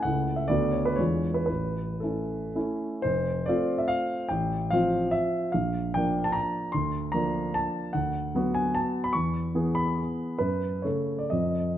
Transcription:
0.03 C#2 A3 C#4 E4 F#5
0.36 E5
0.48 D2 A3 B3 F#4 D5
0.72 C#5
0.85 B4
0.96 E2 G#3 D4 F4 C#5
1.34 B4
1.46 A1 B4
2.00 A3 C#4 E4 A4
2.55 A3 C#4 E4
3.02 F1 C5
3.46 A3 C4 F4 D5
3.78 E5
3.88 F5
4.29 A1 G5
4.71 F3 C4 F4 F5
5.11 E5
5.52 A#1 F5
5.94 F3 A#3 D4 G5
6.24 A5
6.32 A#5
6.72 D2 C6
7.12 F3 A#3 D4 A#5
7.54 A5
7.93 D2 F#5
8.35 F#3 B3 F#4
8.54 G#5
8.75 A5
9.04 B5
9.13 E2 C#6
9.55 E3 B3 G#4
9.75 B5
10.39 F#2 B4
10.82 C#3 A3 A4 C#5
11.19 D5
11.30 F2 F3 C4 A4 D#5

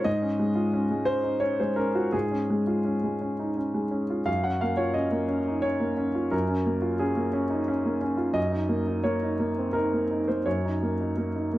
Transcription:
0.04 G#2 D#5
0.22 C#4
0.39 G#3
0.55 F4
0.73 C#4
0.91 G#3
1.05 C#4 C5
1.24 D#4
1.40 C#4 C#5
1.60 G#3 C5
1.76 C#4 A#4
1.95 F4 F#4
2.12 G#2 G#4
2.31 C#4
2.50 G#3
2.67 F4
2.85 C#4
3.04 G#3
3.21 C#4
3.39 D#4
3.57 C#4
3.74 G#3
3.91 C#4
4.10 F4
4.26 F#2 F5
4.44 C#4 F#5
4.61 A#3 F5
4.77 F4 C#5
4.94 C#4 D#5
5.11 A#3
5.28 C#4
5.47 D#4
5.62 C#4 C#5
5.80 A#3
5.97 C#4
6.15 F4
6.31 F#2 A#4
6.49 C#4
6.66 A#3
6.82 F4
6.99 C#4 G#4
7.16 A#3
7.33 C#4
7.50 D#4
7.68 C#4
7.85 A#3
8.01 C#4
8.17 F4
8.34 F#2 D#5
8.52 D#4
8.69 A#3
8.87 D#4
9.04 A#3 C#5
9.23 D#4
9.39 A#3
9.58 C4
9.73 D#4 A#4
9.93 A#3
10.11 D#4
10.28 A#3 C5
10.46 F#2 C#5
10.65 D#4
10.83 A#3
11.00 D#4
11.17 A#3
11.36 D#4
11.53 A#3

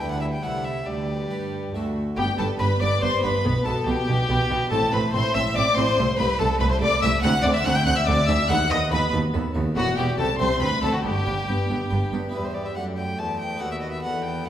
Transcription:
0.00 D2 G3 E4 B4 G5
0.11 F#5
0.21 E5
0.33 G5
0.43 C2 G3 E4 A4 F#5
0.65 E5
0.86 D2 G3 G4 B4 D5
1.30 G2 G4 B4
1.74 D2 A3 F#4 A4
2.16 G1 G2 B3 G4 G5
2.38 G1 G2 B3 A4 B4 A5
2.59 G1 G2 B3 G4 B4 B5
2.80 G1 G2 B3 D4 D5 D6
3.01 G1 G2 B3 G4 C5 C6
3.23 G1 G2 B3 D4 B4 B5
3.44 B1 B2 B3
3.65 B1 B2 B3 A4 B4 A5
3.86 B1 B2 B3 G4 G5
4.07 B1 B2 B3 D4
4.29 B1 B2 B3 G4
4.50 B1 B2 B3 D4
4.71 A1 A2 C4 A4 A5
4.92 A1 A2 C4 B4 C5 B5
5.13 A1 A2 C4 E4 C5 C6
5.34 A1 A2 C4 E5 E6
5.55 A1 A2 C4 C5 D5 D6
5.76 A1 A2 C4 E4 C5 C6
5.97 C2 A3
6.18 C2 A3 B4 C5 B5
6.39 C2 A3 A4 A5
6.60 C2 A3 E4 B4 B5
6.70 C5 C6
6.81 C2 A3 A4 D5 D6
7.02 C2 A3 E4 E5 E6
7.22 D2 C4 F#5 F#6
7.43 D2 C4 C5 D5 D6
7.54 E5 E6
7.64 D2 C4 A4 F#5 F#6
7.75 G5 G6
7.85 D2 C4 D4 F#5 F#6
7.96 E5 E6
8.06 D2 C4 A4 D5 D6
8.27 D2 C4 D4 E5 E6
8.48 D#2 B3 F#5 F#6
8.69 D#2 B3 B4 D#5 D#6
8.91 D#2 B3 A4 B4 B5
9.13 D#2 B3 F#4
9.34 D#2 B3 A4
9.54 D#2 B3 F#4
9.75 E1 E2 B3 F#4 F#5
9.97 E1 E2 B3 E4 G4 G5
10.18 C2 C4 A4 A5
10.38 C2 C4 E4 C5 C6
10.59 D2 C4 B4 B5
10.82 D2 C4 D4 F#4 A4 A5
10.93 F#4 F#5
11.03 G1 G2 B3 G4 G5
11.26 G1 G2 B3 D5
11.48 G1 G2 B3 B4
11.69 G1 G2 B3 G4
11.90 G1 G2 B3 B4
12.12 G1 G2 B3 G4
12.29 B3 E4 G4
12.34 E2 G3 G4 B4
12.45 C5
12.55 D5
12.66 E5
12.76 F#2 A3 D5 F#5
12.97 G5
13.18 E2 G4 C5 A5
13.40 G5
13.56 B3 F#4 A4 B4
13.60 D#2 B3 F#4 F#5
13.72 E5
13.81 D#5
13.92 E5
14.02 E2 A4 B4 F#5
14.24 G5
14.45 F#2 F#5

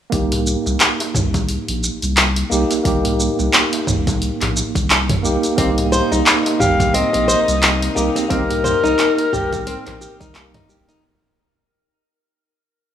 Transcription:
0.10 C2 A#3 D#4 G4, kick, open hi-hat, shaker
0.32 open hi-hat, darbuka dum
0.47 shaker
0.66 C2, darbuka ka, shaker
0.80 clap, open hi-hat, shaker
1.00 open hi-hat, darbuka ka, darbuka tek
1.15 C2, kick, mid tom, shaker
1.34 kick, open hi-hat, darbuka tek, darbuka dum, shaker
1.49 open hi-hat, shaker
1.68 A#1, open hi-hat
1.84 shaker
2.02 C2, open hi-hat, shaker
2.17 clap, open hi-hat, shaker
2.36 open hi-hat, darbuka ka
2.50 C2 A#3 D#4 G4, shaker
2.70 open hi-hat, darbuka tek, shaker
2.83 C2 A#3 D#4 G4, kick, open hi-hat, shaker
3.05 open hi-hat, darbuka dum
3.20 shaker
3.39 C2, darbuka ka, shaker
3.53 clap, open hi-hat, shaker
3.73 open hi-hat, darbuka ka, darbuka tek
3.87 C2, kick, mid tom, shaker
4.07 kick, open hi-hat, darbuka tek, darbuka dum, shaker
4.22 open hi-hat, shaker
4.41 A#1, clap, open hi-hat, darbuka dum
4.56 darbuka ka, shaker
4.75 C2, kick, open hi-hat, shaker
4.90 clap, open hi-hat, shaker
5.09 kick, mid tom, open hi-hat, darbuka ka
5.23 C2 A#3 D#4 G4, shaker
5.43 open hi-hat, shaker
5.56 C2 C3 A#3 C4 D#4, kick, open hi-hat, shaker
5.60 G4
5.78 open hi-hat, darbuka dum
5.92 C5, shaker
6.12 C2 D#4, darbuka ka, shaker
6.26 clap, open hi-hat, shaker
6.46 open hi-hat, darbuka ka, darbuka tek
6.60 C2 G4 F5, kick, mid tom, shaker
6.80 kick, open hi-hat, darbuka tek, darbuka dum, shaker
6.94 C4 D#5, open hi-hat, shaker
7.13 A#1 C4, open hi-hat
7.28 C5, shaker
7.48 C2, open hi-hat, shaker
7.63 clap, open hi-hat, shaker
7.82 open hi-hat, darbuka ka
7.95 C2 A#3 D#4 G4, shaker
8.16 C4, open hi-hat, darbuka tek, shaker
8.28 C2 A#3 C4 D#4 G4 A#4, kick, open hi-hat, shaker
8.50 open hi-hat, darbuka dum
8.64 C5, mid tom, shaker
8.84 C2 D#4, shaker
8.99 clap, open hi-hat, shaker
9.18 open hi-hat, darbuka ka, darbuka tek
9.33 C2 G4, kick, mid tom, shaker
9.52 kick, open hi-hat, darbuka tek, darbuka dum, shaker
9.67 C4, open hi-hat, shaker
9.87 A#1 C4, clap, open hi-hat, darbuka dum
10.01 G4, darbuka ka, shaker
10.20 C2 D#4, kick, open hi-hat, shaker
10.33 A#3 D#4 G4, clap, open hi-hat, shaker
10.54 D#4, kick, mid tom, open hi-hat
10.69 C2 G4, shaker
10.89 D#4, open hi-hat, shaker

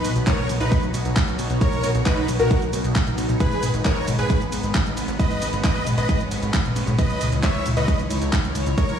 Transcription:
Already playing: B3 D#4 F#4 B4 C#5
0.04 B1, open hi-hat, mid tom, ride, shaker
0.16 B1, closed hi-hat, shaker
0.27 A#4 C#5, kick, clap, closed hi-hat, ride, shaker
0.38 B1, closed hi-hat
0.49 B1, open hi-hat, mid tom, ride, shaker
0.60 B1 D#4 B4, closed hi-hat, shaker
0.72 kick, closed hi-hat, ride, shaker
0.83 B1, closed hi-hat, shaker
0.94 B1, open hi-hat, ride, shaker
1.05 B1, closed hi-hat, shaker
1.16 kick, clap, closed hi-hat, ride, shaker
1.28 B1, shaker
1.39 B1, open hi-hat, ride, shaker
1.50 B1, closed hi-hat, shaker
1.61 A#4 C#5, kick, closed hi-hat, ride, shaker
1.72 B1, closed hi-hat, shaker
1.84 B1, open hi-hat, mid tom, ride, shaker
1.95 B1, closed hi-hat, shaker
2.06 D#4 B4, kick, clap, closed hi-hat, ride, shaker
2.17 B1, closed hi-hat
2.28 B1, open hi-hat, mid tom, ride, shaker
2.40 B1 F#4 A#4, closed hi-hat, shaker
2.51 kick, closed hi-hat, ride, shaker
2.62 B1, closed hi-hat, shaker
2.73 B1, open hi-hat, ride, shaker
2.84 B1, closed hi-hat, shaker
2.96 kick, clap, closed hi-hat, ride, shaker
3.07 B1, closed hi-hat, mid tom, shaker
3.18 B1, open hi-hat, ride, shaker
3.29 B1, closed hi-hat, mid tom, shaker
3.40 G#3 B3 G#4 B4, kick, closed hi-hat, ride, shaker
3.52 G#1, closed hi-hat, shaker
3.63 G#1, open hi-hat, mid tom, ride, shaker
3.74 G#1, closed hi-hat, shaker
3.85 A#4 C#5, kick, clap, closed hi-hat, ride, shaker
3.96 G#1, closed hi-hat
4.08 G#1, open hi-hat, mid tom, ride, shaker
4.19 G#1 G#4 B4, closed hi-hat, shaker
4.30 kick, closed hi-hat, ride, shaker
4.41 G#1, closed hi-hat, shaker
4.52 G#1, open hi-hat, ride, shaker
4.63 G#1, closed hi-hat, shaker
4.75 kick, clap, closed hi-hat, ride, shaker
4.86 G#1, shaker
4.97 G#1, open hi-hat, ride, shaker
5.08 G#1, closed hi-hat, shaker
5.19 C#4 B4 D#5, kick, closed hi-hat, ride, shaker
5.31 G#1, closed hi-hat, shaker
5.42 G#1, open hi-hat, ride, shaker
5.53 G#1, closed hi-hat, shaker
5.64 B4 D#5, kick, clap, closed hi-hat, ride, shaker
5.75 G#1, closed hi-hat
5.87 G#1, open hi-hat, mid tom, ride, shaker
5.98 G#1 B4 D#5, closed hi-hat, shaker
6.09 kick, closed hi-hat, ride, shaker
6.20 G#1, closed hi-hat, shaker
6.31 G#1, open hi-hat, ride, shaker
6.43 G#1, closed hi-hat, shaker
6.54 kick, clap, closed hi-hat, ride, shaker
6.65 G#1, mid tom, shaker
6.76 G#1, open hi-hat, ride, shaker
6.87 G#1, closed hi-hat, mid tom, shaker
6.99 D#4 E4 B4 C#5 D#5, kick, closed hi-hat, ride, shaker
7.10 C#2, closed hi-hat, shaker
7.21 C#2, open hi-hat, mid tom, ride, shaker
7.32 C#2, closed hi-hat, shaker
7.43 C#5 E5, kick, clap, closed hi-hat, ride, shaker
7.55 C#2, closed hi-hat
7.66 C#2, open hi-hat, mid tom, ride, shaker
7.77 C#2 B4 D#5, closed hi-hat, shaker
7.88 kick, closed hi-hat, ride, shaker
7.99 C#2, closed hi-hat, shaker
8.10 C#2, open hi-hat, ride, shaker
8.22 C#2, closed hi-hat, shaker
8.33 kick, clap, closed hi-hat, ride, shaker
8.44 C#2, shaker
8.55 C#2, open hi-hat, ride, shaker
8.66 C#2, closed hi-hat, shaker
8.78 A#3 C#4 F#4 A#4 C#5, kick, closed hi-hat, ride, shaker
8.89 F#1, closed hi-hat, shaker

